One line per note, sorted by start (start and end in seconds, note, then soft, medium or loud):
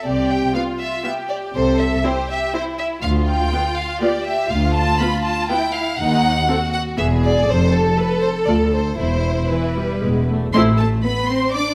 0.04 0.46 C2 medium
0.04 0.45 C3 medium
0.04 0.54 G4 medium
0.04 0.29 D5 medium
0.29 0.54 G5 medium
0.53 0.62 B3 soft
0.53 1.03 F4 soft
0.53 0.62 F4 soft
0.53 0.62 F5 medium
0.79 1.03 E5 medium
1.04 1.12 B3 soft
1.04 1.12 F4 soft
1.04 1.54 G4 soft
1.04 1.12 E5 medium
1.28 1.36 D5 soft
1.54 1.96 C2 medium
1.54 1.95 C3 medium
1.54 2.04 A4 medium
1.54 1.79 C5 medium
1.79 2.04 E5 medium
2.04 2.12 C4 soft
2.04 2.12 E4 soft
2.04 2.52 G4 medium
2.04 2.29 C5 medium
2.29 2.53 E5 medium
2.53 2.61 C4 soft
2.53 2.62 E4 soft
2.53 3.03 E4 medium
2.53 2.62 C5 medium
2.79 2.87 E5 medium
3.02 3.44 D2 medium
3.02 3.45 D2 medium
3.02 4.00 F4 medium
3.02 3.10 F5 medium
3.28 3.76 G5 medium
3.52 3.60 B3 soft
3.52 3.60 F4 soft
3.77 4.02 F5 medium
4.01 4.10 B3 soft
4.01 4.10 F4 soft
4.01 4.51 G4 medium
4.01 4.25 D5 medium
4.26 4.50 E5 medium
4.50 4.92 D2 medium
4.50 5.48 F4 medium
4.50 4.76 F5 medium
4.76 5.00 A5 medium
5.00 5.09 B3 soft
5.00 5.08 F4 soft
5.00 5.25 B5 medium
5.25 5.49 A5 medium
5.49 5.57 B3 soft
5.49 5.99 E4 medium
5.49 5.58 F4 soft
5.49 5.74 G5 medium
5.74 5.99 F5 medium
5.99 6.40 D#2 medium
5.99 6.47 D#4 medium
5.99 6.72 F#5 medium
6.48 6.56 C4 soft
6.48 6.97 F#4 medium
6.48 6.56 A4 soft
6.73 6.81 F#5 medium
6.97 7.39 E1 medium
6.97 7.38 E2 medium
6.97 7.05 B3 soft
6.97 7.05 G#4 soft
6.97 7.47 G#4 medium
6.97 7.05 E5 medium
7.22 7.46 D5 medium
7.46 7.88 F1 medium
7.46 7.88 F2 medium
7.46 8.99 A4 medium
7.46 7.72 C5 medium
7.72 7.97 A4 medium
7.97 8.05 A3 soft
7.97 8.05 A4 soft
7.97 8.22 B4 medium
8.21 8.29 C5 medium
8.46 8.90 D2 medium
8.46 8.56 A3 soft
8.46 8.56 F4 soft
8.46 8.55 D5 medium
8.72 8.97 C5 medium
8.98 9.42 E1 medium
8.98 9.42 E2 soft
8.98 10.26 E4 medium
8.98 9.50 C5 medium
9.50 9.75 E3 soft
9.50 10.28 B4 medium
9.77 10.02 G3 soft
10.02 10.45 E1 soft
10.02 10.45 E2 soft
10.02 10.28 G#3 soft
10.28 10.52 A3 soft
10.53 10.96 A1 medium
10.53 10.77 A3 medium
10.53 10.61 C4 medium
10.53 10.77 E4 medium
10.53 10.62 C5 medium
10.53 10.61 C6 medium
10.78 11.03 A3 medium
10.78 10.86 A4 medium
10.78 10.87 A5 medium
11.03 11.29 B3 medium
11.03 11.28 B4 medium
11.03 11.28 B5 medium
11.28 11.54 C4 medium
11.28 11.54 C5 medium
11.28 11.54 C6 medium
11.53 11.74 D4 medium
11.53 11.74 D5 medium
11.53 11.74 D6 medium